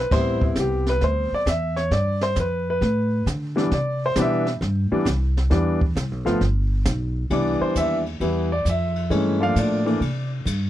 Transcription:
0.00 B4
0.11 A1 G3 B3 C4 E4 C5, brush sweep, kick, snare, crash
0.42 E4, kick
0.56 C2 G4, kick, snare, hi-hat pedal
0.86 B4, snare
1.01 D2 C5, brush sweep, kick, snare
1.32 D5, muted upright bass stroke
1.46 E2 E5, kick, snare, hi-hat pedal
1.76 C#5, snare
1.91 G2 D5, brush sweep, kick, snare
2.21 C5, snare
2.36 F2, kick, snare, hi-hat pedal
2.40 B4
2.70 B4
2.81 A2, brush sweep, kick, snare
3.26 D3, kick, snare, hi-hat pedal
3.56 E3 G3 B3 D4, snare
3.71 C3 D5, brush sweep, kick, snare
4.06 C5
4.16 B2 E3 G3 B3 D4, kick, snare, hi-hat pedal
4.22 E5
4.46 snare
4.61 G2, brush sweep, kick, snare
4.91 E3 G3 B3 D4, muted upright bass stroke
5.05 C2, kick, snare, hi-hat pedal
5.37 snare
5.50 E2 E3 G3 B3 D4, brush sweep, kick, snare
5.81 kick
5.95 C2, kick, snare, hi-hat pedal
6.11 B1
6.25 G1 F3 A3 B3 F4, snare
6.41 G1, brush sweep, kick, snare
6.85 B1, kick, snare, hi-hat pedal
7.30 C2 E3 G3 B3 D4 D5, kick, ride
7.61 C5, muted upright bass stroke
7.75 D#2 E5, kick, hi-hat pedal, ride
8.06 ride
8.20 E2 E3 G3 B3 E4, kick, ride
8.52 D5
8.65 F2, kick, hi-hat pedal, ride
8.69 E5
8.96 ride
9.10 G2 E3 G#3 A3 C#4, kick, ride
9.40 F3 A3 A#3 D4 F5
9.56 A2 D5, kick, hi-hat pedal, ride
9.85 E3 A3 A#3 D4, ride
10.01 C3, kick, ride
10.45 G2, kick, hi-hat pedal, ride

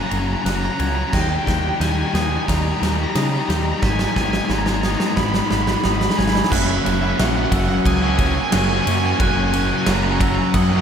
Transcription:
Already playing: F#2 A#3 C#4 F#6
0.03 F#2 C#3 A#5
0.10 F#1 F#2 C#3 F#3 A#5, ride
0.18 F#2 C#3 A#5
0.26 F#2 C#3 A#5
0.33 F#2 C#3 A#5
0.42 F#1 F#2 C#3 C#4 A#5 F#6
0.46 A#5, snare, ride
0.51 F#2 C#3
0.56 F#2 C#3 A#5
0.64 F#2 C#3 A#5
0.72 F#2 C#3 A#5
0.79 C#2 F#2 C#3 F#4 A#5 G#6, ride
0.88 F#2 C#3 A#5
0.95 F#2 C#3 A#5
1.02 F#2 A#5
1.06 C#3 A#5
1.12 D#2 D#3 G3 G5 A#6, kick, snare, crash
1.21 D#3 G3 G5
1.29 D#3 G3 G5
1.35 D#3 G3 G5
1.44 D#2 D#3 G3 A#3 G5, kick
1.48 D#3, snare, ride
1.52 G3 G5
1.59 D#3 G3 G5
1.68 D#3 G3 G5
1.75 D#3 G3
1.80 D#2 D#3 G3 G#5 G6, snare, ride
1.90 D#3 G3 G#5
1.98 D#3 G3 G#5
2.05 D#3 G3 G#5
2.12 D#2 D#3 G3 A#3 G#5 D#6, snare, ride
2.21 D#3 G3 G#5
2.28 D#3 G3 G#5
2.36 D#3 G3 G#5
2.44 D#3 G3
2.48 D#2 D#4 A#5, kick, snare, ride
2.52 D#3 G3 A#5
2.59 D#3 G3 A#5
2.66 D#3 G3
2.72 D#3 A#5
2.76 G3 A#5
2.82 D#2 D#3 G3, snare, ride
2.87 D#3 G3 A#5
2.94 D#3 A#5
2.99 G3 A#5
3.06 D#3 G3 A#5
3.13 C#3 D#3 G3 D#4 D#6, snare, ride
3.18 D#3 G3 A#5
3.26 D#3 A#5
3.30 G3 A#5
3.36 D#3 G3
3.41 D#3 G3 A#5
3.49 D#2 D#3 G3 G4 A#5 G6, snare, ride
3.56 D#3 G3 A#5
3.64 D#3 A#5
3.69 G3 A#5
3.75 D#3 G3
3.79 G#1 G#2 D#3 A#5 B6, kick, snare
3.84 G#5
3.90 G#2 D#3 G#5
3.98 G#2 D#3 G#5, snare
4.06 G#2 D#3 G#5
4.13 G#2 D#3 B3 G#5, kick, snare
4.17 G#1
4.22 G#2 D#3 G#5
4.29 G#2 D#3 G#5
4.33 G#2 D#3, snare
4.37 G#5
4.44 G#2 D#3 G#5
4.49 G#1 G#2 D#3 G#3 A#5 G#6, snare
4.58 G#2 D#3 A#5
4.66 G#2 D#3 A#5, snare
4.74 G#2 D#3 A#5
4.82 G#2 D#3 B3 A#5 D#6, snare
4.90 G#2 D#3 A#5
4.98 G#2 D#3 A#5, snare
5.06 G#2 D#3 A#5
5.13 G#2 D#3 D#4 B5, kick, snare
5.17 G#1 D#3
5.22 G#2 B5
5.29 G#2 D#3 B5
5.34 G#2 D#3, snare
5.39 B5
5.43 G#2 D#3 B5
5.50 G#1 G#2 D#3 G#3, snare
5.55 G#2 B5
5.60 D#3 B5
5.67 G#2 D#3 B5, snare
5.75 G#2 D#3 B5
5.82 G#1 G#2 D#3 D#4 B5 D#6, snare
5.91 G#2 D#3 B5
5.98 G#2 D#3 B5, snare
6.05 G#2 D#3
6.09 B5, snare
6.14 G#2 D#3 G#4 B5
6.18 G#1 G#2 D#3 G#6, snare
6.24 B5, snare
6.28 G#2 D#3 B5
6.35 G#2 D#3, snare
6.39 B5
6.44 G#2 D#3, snare
6.51 F#1 F#2 C#3 F#3 A#3 C#4 F#4 E5 F#6, kick, crash
6.62 E5
6.70 E5
6.78 E5
6.83 F#1 F#3 A#3 C#4 F#4 E5, ride
6.93 E5
7.01 F#3 A#3 C#4 F#4 E5
7.09 E5
7.17 A#1 F#2 C#3 F#3 A#3 C#4 F#4 F#5, snare, ride
7.28 F#5
7.35 F#5
7.43 F#5
7.52 F#1 F#3 A#3 C#4 F#4 F#5 E6, kick, ride
7.60 F#5
7.68 F#3 A#3 C#4 F#4 F#5, muted distorted electric guitar stroke
7.74 F#5
7.86 C#2 G#5 D#6, kick, ride
7.94 G#5
8.01 F#3 A#3 C#4 F#4 G#5
8.09 G#5
8.17 C#3 F#3 A#3 C#4 F#4 G#5, kick, ride
8.25 G#5
8.33 F#3 A#3 C#4 F#4 G#5, muted distorted electric guitar stroke
8.41 G#5
8.48 F#2 G#5
8.52 F#1 C#3 F#3 A#3 C#4 F#4 C#6, snare, ride
8.57 G#5
8.65 C#4 F#4 G#5
8.69 F#3 A#3 G#5
8.80 G#5
8.84 F#2 C#3 F#3 A#3 C#4 F#4 G#5 C#6, ride
8.96 G#5
9.01 F#3 A#3 C#4 G#5
9.11 G#5
9.19 F#1 F#2 C#3 F#3 A#3 C#4 F#4 G#5 F#6, kick, ride
9.28 G#5
9.37 G#5
9.43 G#5
9.52 F#3 A#3 C#4 F#4 G#5, ride
9.58 G#5
9.67 C#4 F#4 G#5
9.71 F#3 A#3 G#5
9.83 G#5, snare, ride
9.87 F#1 F#2 C#3 F#3 A#3 C#4 F#4 A#5
9.94 A#5
10.03 A#5
10.11 A#5
10.19 F#3 A#3 C#4 F#4 A#5 E6, kick, ride
10.27 A#5
10.35 F#3 A#3 C#4 F#4 A#5, muted distorted electric guitar stroke
10.42 A#5
10.54 F#2 F#5 D#6, kick, ride
10.62 F#5
10.70 F#3 A#3 C#4 F#4 F#5
10.77 F#5

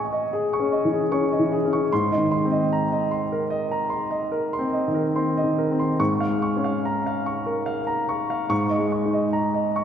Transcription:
Already playing: A2 E3 C#4 G#4 D#5 G#5 C#6
0.13 D#5
0.33 G#4
0.53 C#6
0.60 C#4
0.72 D#5
0.85 E3
0.93 G#4
1.12 C#4 C#6
1.32 D#5
1.39 E3
1.52 G#4
1.65 C#4
1.73 C#6
1.93 G#2 C6
2.12 D#5
2.18 D#3
2.31 C6
2.45 C4
2.52 D#5
2.73 A#5
2.92 D#5
3.11 C6
3.32 A#4
3.50 D#5
3.71 A#5
3.90 C6
4.11 D#5
4.32 A#4
4.53 C6
4.59 C4
4.73 D#5
4.88 D#3
4.94 A#4
5.15 C4 C6
5.38 D#5
5.44 D#3
5.58 A#4
5.71 C4
5.79 C6
6.00 G#2 C#6
6.20 F5
6.29 G#3
6.42 C#6
6.57 C#4
6.64 F5
6.85 A#5
7.06 F5
7.26 C#6
7.46 A#4
7.66 F5
7.87 A#5
8.09 C#6
8.30 F5
8.49 G#2 C#6
8.70 D#5
8.78 G#3
8.92 C#6
9.06 D#4
9.13 D#5
9.33 A#5
9.54 D#5
9.76 C#6

